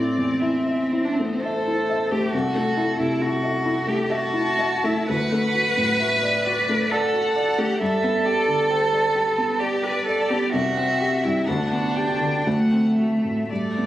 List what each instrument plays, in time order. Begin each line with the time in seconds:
Already playing: grand piano A1 A3 E4, cello C4, violin D5
0.18 grand piano E2
0.40 grand piano E4, violin E5
0.67 grand piano E5
0.91 grand piano E4, violin C5
1.05 cello D4
1.14 cello C4
1.19 grand piano A3
1.25 cello B3
1.34 cello C4
1.42 cello A4, grand piano E5
1.67 grand piano E4
1.90 grand piano E5
2.11 grand piano A3, cello G4
2.33 grand piano C2, cello F#4, violin A4
2.56 grand piano A3
2.77 grand piano E4
3.00 grand piano C3, cello E4
3.21 grand piano E4, cello F#4
3.44 grand piano E5
3.66 grand piano E4
3.87 grand piano A3, cello G4
4.08 cello F#4, grand piano E5, violin A5
4.34 grand piano E4
4.59 grand piano E5
4.84 grand piano A3, cello E4
5.08 grand piano D2, cello B4, violin F#5
5.32 grand piano A3
5.55 grand piano F#4
5.77 grand piano A2
5.99 grand piano F#4, violin E5
6.23 grand piano D5
6.45 grand piano F#4, violin D5
6.69 grand piano A3
6.90 cello A4, grand piano D5, violin F#5
7.14 grand piano F#4
7.36 grand piano D5
7.58 grand piano A3, cello G4
7.80 grand piano G2, cello A4, violin E5
8.04 grand piano B3
8.25 grand piano G4, violin D5
8.48 grand piano D3
8.70 grand piano G4, violin C5
8.93 grand piano D5
9.14 grand piano G4, violin B4
9.38 grand piano B3
9.60 cello G4, violin D5, grand piano D5
9.83 grand piano G4, cello B4
10.06 cello A4, grand piano D5
10.29 grand piano B3, cello G4
10.53 grand piano C2, cello F#4, violin E5
10.77 grand piano C4
11.01 grand piano G4
11.24 grand piano G2, cello E4
11.47 grand piano D2, cello D4, violin F#5
11.72 grand piano B3
11.95 grand piano G4, violin G5
12.21 grand piano D3
12.46 grand piano D2, cello A3, violin F#5
12.72 grand piano C4
12.95 grand piano F#4, violin E5
13.25 grand piano A2
13.50 grand piano G2, cello A3, violin D5
13.78 grand piano B3